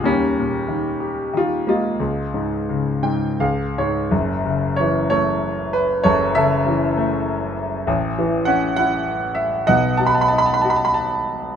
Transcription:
<<
  \new Staff \with { instrumentName = "Grand piano" } { \time 3/4 \key ees \mixolydian \tempo 4 = 93 << { des'2 f'8 f'8~ | f'2 r4 | \key fis \dorian r4 cis''8 cis''4 b'8 | cis''8 e''2 r8 |
r4 fis''8 fis''4 e''8 | fis''8 a''32 b''32 a''32 b''32 a''32 b''32 a''32 b''32 a''32 b''32 a''32 b''32 a''8 r8 | } \\ { <g bes>2 r8 aes8~ | aes2 r4 | r2. | a'8 a'2 r8 |
r2. | dis''4. r4. | } >> }
  \new Staff \with { instrumentName = "Grand piano" } { \clef bass \time 3/4 \key ees \mixolydian ees,8 bes,8 ees8 g'8 ees8 bes8 | des,8 aes,8 des8 <aes, g''>8 <des, f''>8 <aes, des''>8 | \key fis \dorian <fis,, fis,>8 cis8 e8 a4. | <fis,, fis,>8 cis8 e8 a4. |
<a,, a,>8 e8 cis'8 e'4. | <b,, b,>8 fis8 dis'8 fis'4. | }
>>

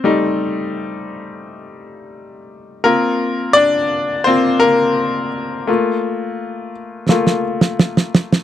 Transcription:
<<
  \new Staff \with { instrumentName = "Grand piano" } { \time 4/4 \key bes \major \tempo 4 = 85 r1 | bes'4 <d' d''>4 c''8 <bes bes'>4 r8 | r1 | }
  \new Staff \with { instrumentName = "Grand piano" } { \time 4/4 \key bes \major <g a ees'>1 | <bes c' f'>2 <bes c' f'>8 r4. | <a bes f'>4. r8 <a bes f'>8 r4. | }
  \new DrumStaff \with { instrumentName = "Drums" } \drummode { \time 4/4 r4 r4 r4 r4 | r4 r4 r4 r4 | r4 r4 sn16 sn8 sn16 sn16 sn16 sn16 sn16 | }
>>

